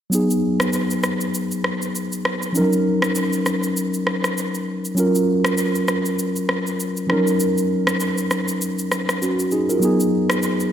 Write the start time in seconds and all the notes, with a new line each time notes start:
0.10 F#3 B3 D#4, shaker
0.15 G#4
0.30 shaker
0.60 cross-stick, shaker
0.73 shaker
0.90 shaker
1.03 cross-stick, shaker
1.21 shaker
1.34 shaker
1.51 shaker
1.64 cross-stick
1.82 shaker
1.95 shaker
2.12 shaker
2.25 cross-stick
2.42 shaker
2.53 F3 C#4 D#4, shaker
2.58 F#3 A#4
2.73 shaker
3.02 cross-stick, shaker
3.15 shaker
3.33 shaker
3.46 cross-stick, shaker
3.63 shaker
3.77 shaker
3.94 shaker
4.07 cross-stick
4.24 cross-stick, shaker
4.38 shaker
4.55 shaker
4.85 shaker
4.95 F#3 C#4 F4, shaker
5.00 A#4
5.15 shaker
5.45 cross-stick, shaker
5.57 shaker
5.75 shaker
5.88 cross-stick, shaker
6.05 shaker
6.19 shaker
6.36 shaker
6.49 cross-stick
6.67 shaker
6.80 shaker
6.97 shaker
7.07 F3 C#4 D#4, cross-stick
7.12 F#3 A#4
7.27 shaker
7.40 shaker
7.58 shaker
7.87 cross-stick, shaker
8.00 shaker
8.18 shaker
8.31 cross-stick, shaker
8.48 shaker
8.61 shaker
8.79 shaker
8.92 cross-stick, shaker
9.09 cross-stick, shaker
9.22 C#4 F#4, shaker
9.39 shaker
9.51 D#4 G#4, shaker
9.69 F4 A#4, shaker
9.80 F#3 B3 D#4, shaker
9.85 G#4
10.00 shaker
10.30 cross-stick, shaker
10.43 shaker
10.60 shaker